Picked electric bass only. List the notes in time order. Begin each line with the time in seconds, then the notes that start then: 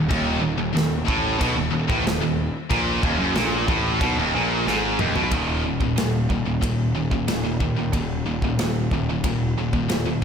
0.11 D#1
0.42 D#1
0.58 D#1
0.74 D#1
1.08 A1
1.41 B1
1.56 D#1
1.72 D#1
1.90 A1
2.05 D#1
2.22 D#1
2.71 A#1
3.03 D#1
3.19 F#1
3.35 A#1
3.69 A1
4.01 B1
4.17 D#1
4.35 A#1
4.67 G#1
5.00 D#1
5.16 B1
5.32 D#1
5.97 D#1
6.30 D#1
6.63 D#1
7.27 D#1
7.61 D#2
7.93 D#1
8.25 D#1
8.58 D#1
8.91 D#1
9.24 D#1
9.57 D#1
9.89 D#1